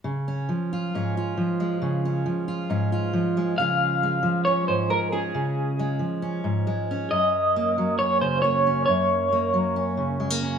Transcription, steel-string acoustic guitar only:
\new Staff \with { instrumentName = "Steel-string acoustic guitar" } { \clef bass \time 4/4 \key des \major \tempo 4 = 136 << { r8 des'4 f'8 des'8 f'4 aes8~ | aes8 des'4 f'8 des'8 f'4 aes8 | <f aes des' f'>4 aes4 des'4 aes8 des'8 | r4 aes4 des'4 aes8 des'8 |
r4 bes4 des'4 bes8 des'8 | r4 bes4 des'4 aes16 bes16 des'8 | } \\ { des4 f4 aes,4 f4 | des4 f4 aes,4 f4 | des4. f4 aes,4. | des4. f4 aes,4. |
ges,4. ges4 des4. | ges,4. ges4 des4. | } >> }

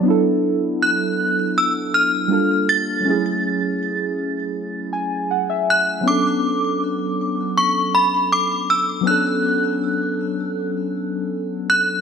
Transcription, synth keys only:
\new Staff \with { instrumentName = "Synth keys" } { \time 4/4 \key b \dorian \tempo 4 = 80 << { r1 | r2 r8 gis''8 fis''16 e''8. | r1 | r1 | } \\ { <fis b d' e' a'>2. <g bes d' f' a'>4 | <fis gis a cis' e' gis'>1 | <fis b cis' d' a'>1 | <fis b cis' d' a'>1 | } >> }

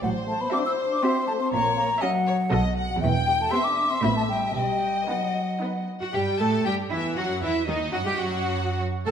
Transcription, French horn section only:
\new Staff \with { instrumentName = "French horn section" } { \time 3/4 \key e \minor \tempo 4 = 119 fis8 a16 b16 d'16 e'8 d'16 c'8 a16 c'16 | ais8 ais8 fis4~ fis16 r8 fis16 | e8 g16 a16 c'16 d'8 c'16 b16 a16 g8 | g4 fis4. r8 |
r2. | r2. | }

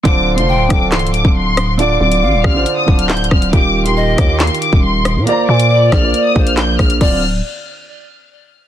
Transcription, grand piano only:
\new Staff \with { instrumentName = "Grand piano" } { \time 4/4 \key d \phrygian \tempo 4 = 138 <d d' f' c''>8 r16 <d d' f' c''>8 r16 <d d' f' a'>4. r4 | <d d' f' d''>4~ <d d' f' d''>16 r8 <d d' f' c''>8 r16 <d d' f' c''>4 r8 | <ees ees' f' g'>8 r16 <ees ees' f' g'>8 r16 <ees ees' f' g'>4. r4 | <bes f' c'' d''>4~ <bes f' c'' d''>16 r8 <bes f' c'' d''>8 r16 <bes f' c'' d''>4 r8 |
<d c' f' d''>8 r2. r8 | }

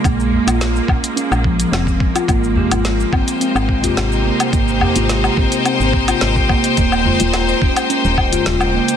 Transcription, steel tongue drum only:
\new Staff \with { instrumentName = "Steel tongue drum" } { \time 4/4 \key aes \major \tempo 4 = 107 bes8. f'16 r8 des'8 des'16 r16 f16 f16 c'16 r16 aes16 f'16 | bes8. f'16 r8 c'8 c'8. f'16 r8 bes16 r16 | bes8. f'16 r8 c'8 c'8. f'16 r8 bes16 r16 | bes8. f'16 r8 des'8 des'8. f'16 r8 bes16 r16 | }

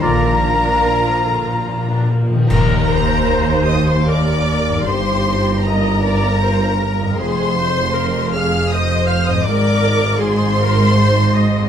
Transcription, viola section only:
\new Staff \with { instrumentName = "Viola section" } { \time 3/4 \key ees \major \tempo 4 = 77 << { f'2~ f'8. r16 | bes'8 c''4. bes'4 | g'4 ees''8 d''8 c''8 bes'8 | aes'8 c''8 bes'8 aes'8 c''4 |
bes'4 aes'8 bes'8 c''8 ees''8 | } \\ { d16 f16 bes16 d'16 bes16 f16 d16 f16 bes16 d'16 bes16 f16 | r2. | r2. | r2. |
r2. | } >> }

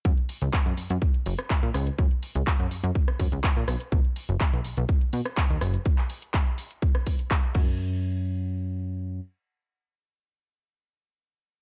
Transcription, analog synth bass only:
\new Staff \with { instrumentName = "Analog synth bass" } { \clef bass \time 4/4 \key fis \major \tempo 4 = 124 fis,16 r8 cis,16 r16 fis,16 fis,16 fis,16 r8 fis,,16 r8 ais,16 cis,16 r16 | fis,16 r8 cis,16 r16 fis,16 fis,16 fis,16 r8 fis,16 cis,16 r16 ais,16 b,,16 r16 | b,,16 r8 fis,,16 r16 b,,16 r16 b,,16 r8 b,16 r8 dis,16 fis,,16 r16 | r2. r8 fis,8~ |
fis,2. r4 | r1 | }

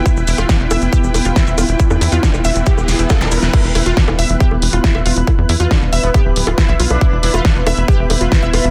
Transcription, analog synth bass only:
\new Staff \with { instrumentName = "Analog synth bass" } { \clef bass \time 4/4 \key e \minor \tempo 4 = 138 r16 e,,16 e,,16 e,,16 r16 e,,16 e,,16 f,,16 r16 e,,16 e,,16 e,,16 r16 e,,16 e,,16 e,,16 | r16 e,16 e,16 e,16 r16 e,,16 e,,16 e,,16 r16 e,,16 e,,16 e,,16 r16 e,,16 e,,16 e,,16 | r16 e,,16 e,,16 e,,16 r16 e,,16 e,,16 f,,16 r16 e,,16 e,,16 e,,16 r16 e,,16 e,,16 e,,16 | r16 e,16 e,16 e,16 r16 e,,16 e,,16 e,,16 r16 d,,16 d,,16 d,,16 r16 b,,16 b,,16 b,,16 |
r16 e,,16 e,,16 e,,16 r16 e,,16 e,,16 f,,16 r16 e,,16 e,,16 e,,16 r16 e,,16 e,,16 e,,16 | }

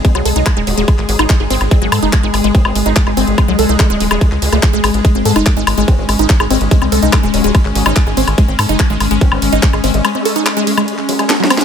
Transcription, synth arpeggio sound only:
\new Staff \with { instrumentName = "Synth arpeggio sound" } { \clef bass \time 4/4 \key gis \major \tempo 4 = 144 gis16 fis16 a'16 dis'16 r16 gis16 gis16 gis16 r8 gis16 dis'16 r16 gis'16 bis16 r16 | gis16 fis16 a'16 dis'16 r16 gis16 gis16 gis16 r8 gis16 dis'16 r16 gis'16 bis16 r16 | gis16 fis16 a'16 dis'16 r16 gis16 gis16 gis16 r8 gis16 a16 r16 gis16 gis'16 r16 | gis16 bis16 a'16 dis'16 r16 gis16 gis16 gis16 r8 gis16 dis'16 r16 gis'16 bis16 r16 |
gis16 bis16 a'16 dis'16 r16 gis16 gis16 gis16 r8 gis16 dis'16 r16 gis'16 bis16 r16 | gis16 bis16 a'16 dis'16 r16 gis16 gis16 gis16 r8 gis16 dis'16 r16 gis'16 bis16 r16 | gis16 bis16 a'16 dis'16 r16 gis16 gis16 gis16 r8 fis16 gis'16 a'16 fis16 bis16 gis16 | }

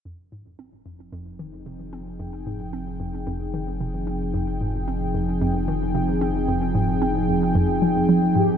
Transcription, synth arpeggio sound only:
\new Staff \with { instrumentName = "Synth arpeggio sound" } { \clef bass \time 4/4 \key f \minor \tempo 4 = 112 f,8 aes,8 c'8 f,8 f,8 ees8 c8 c'8 | f,8 aes,8 c'8 f,8 f,8 ees8 c8 c'8 | f,8 aes,8 c'8 f,8 f,8 ees8 c8 c'8 | f,8 aes,8 c'8 f,8 f,8 f8 f8 aes,8 | }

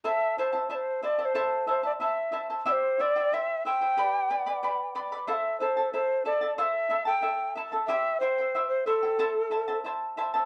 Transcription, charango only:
\new Staff \with { instrumentName = "Charango" } { \time 2/4 \key a \minor \tempo 4 = 92 <e' a' c'' e'' a''>8 <e' c'' e'' a''>16 <e' c'' a''>16 <e' c'' e'' a''>8 <e' c'' e'' a''>16 <e' c'' a''>16 | <e' a' c'' e'' a''>8 <e' c'' e'' a''>16 <e' c'' a''>16 <e' c'' e'' a''>8 <e' c'' e'' a''>16 <e' c'' a''>16 | <e' g' c'' e'' g''>8 <e' c'' e'' g''>16 <e' c'' g''>16 <e' c'' e'' g''>8 <e' c'' e'' g''>16 <e' c'' g''>16 | <g' b' d'' g'' b''>8 <b' d'' g'' b''>16 <b' d'' b''>16 <b' d'' g'' b''>8 <b' d'' g'' b''>16 <b' d'' b''>16 |
<e' a' c'' e'' a''>8 <e' a' e'' a''>16 <e' a' a''>16 <e' a' e'' a''>8 <e' a' e'' a''>16 <e' a' a''>16 | <e' a' c'' e'' a''>8 <e' a' e'' a''>16 <e' a' a''>16 <e' a' e'' a''>8 <e' a' e'' a''>16 <e' a' a''>16 | <e' g' c'' e'' g''>8 <e' c'' e'' g''>16 <e' c'' g''>16 <e' c'' e'' g''>8 <e' c'' e'' g''>16 <e' c'' g''>16 | <e' a' c'' e'' a''>8 <e' c'' e'' a''>16 <e' c'' a''>16 <e' c'' e'' a''>8 <e' c'' e'' a''>16 <e' c'' a''>16 | }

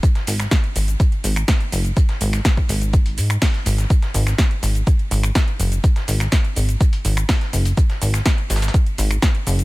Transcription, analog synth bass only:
\new Staff \with { instrumentName = "Analog synth bass" } { \clef bass \time 4/4 \key fis \major \tempo 4 = 124 r8 gis,,8 r8 gis,,8 r8 gis,,8 r8 fis,,8 | r8 gis,,8 r8 gis,,4 gis,8 r8 gis,,8 | r8 gis,,8 r8 gis,,8 r8 gis,,8 r8 fis,,8 | r8 gis,,8 r8 gis,,8 r8 gis,,8 r8 fis,,8 |
r8 gis,,8 r8 gis,,8 r8 gis,,8 r8 fis,,8 | }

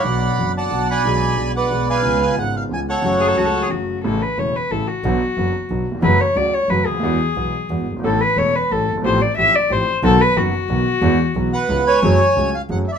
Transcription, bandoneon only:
\new Staff \with { instrumentName = "Bandoneon" } { \time 3/4 \key fis \minor \tempo 4 = 180 << { b''4. a''4 b''8~ | b''4. fis''4 gis''8~ | gis''8 gis''8 fis''8 eis''8 gis''8 fis''8~ | fis''2 r4 |
\key a \major r2. | r2. | r2. | r2. |
r2. | r2. | r2. | r4. fis''4 gis''8~ |
\key fis \minor gis''4. eis''8 fis''8 e''32 d''32 e''16 | } \\ { <d'' fis''>4. <d'' fis''>4 <d'' gis''>8~ | <d'' gis''>4. <b' d''>4 <b' eis''>8~ | <b' eis''>4 r4. <a' cis''>8~ | <a' cis''>2 r4 |
r2. | r2. | r2. | r2. |
r2. | r2. | r2. | r4. b'4 cis''8~ |
cis''4. r4. | } >> }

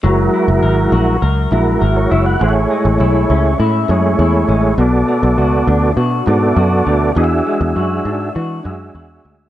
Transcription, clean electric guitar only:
\new Staff \with { instrumentName = "Clean electric guitar" } { \time 4/4 \key fis \minor \tempo 4 = 101 fis8 e'8 ais'8 fis'8 ais'8 e'8 ais'8 e'8 | a,8 gis8 e'8 cis'8 e'8 gis8 e'8 gis8 | b,8 a8 fis'8 d'8 fis'8 a8 fis'8 a8 | e8 gis8 fis'8 d'8 fis'8 gis8 fis'8 gis8 | }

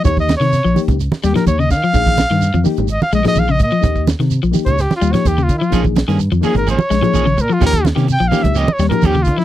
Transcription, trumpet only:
\new Staff \with { instrumentName = "Trumpet" } { \time 4/4 \key ees \mixolydian \tempo 4 = 127 \tuplet 3/2 { des''8 ees''8 des''8~ } des''8. r8. g'16 bes'16 des''16 ees''16 f''8~ | f''4. r8 ees''16 f''16 ees''16 ees''16 f''16 ees''16 ees''8~ | ees''8 r8 \tuplet 3/2 { r4 des''8 g'8 f'8 des''8 g'8 f'8 f'8~ } | f'16 r4 r16 aes'16 bes'16 des''4. bes'16 f'16 |
bes'8 r8 \tuplet 3/2 { g''8 f''8 e''8 ees''8 des''8 bes'8 g'8 f'8 e'8 } | }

